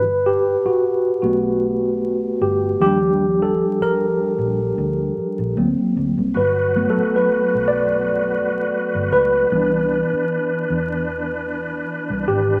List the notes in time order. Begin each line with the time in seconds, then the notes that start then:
Already playing: B4
0.05 G1
0.26 G4
0.65 F#4, muted fingered electric bass stroke
1.22 B1 A3 B3 F#4
2.41 G1 G4
2.80 D#2 F3 G3 D4 G4
3.42 A4
3.81 A#4, muted fingered electric bass stroke
4.38 A#1
4.78 D2
5.17 muted fingered electric bass stroke
5.39 A#1
5.57 D2 F#3 A#3 C4
5.97 D2
6.18 C2
6.34 G1 F#3 F#4 B4
6.75 F#3 A3 B3
6.90 A4
6.97 muted fingered electric bass stroke
7.16 B4
7.55 B1
7.68 D5
8.94 G1
9.12 C#2 B4
9.50 C2 E3 B3 D4
10.13 muted fingered electric bass stroke
10.70 E2
12.10 C2
12.28 G#1 G4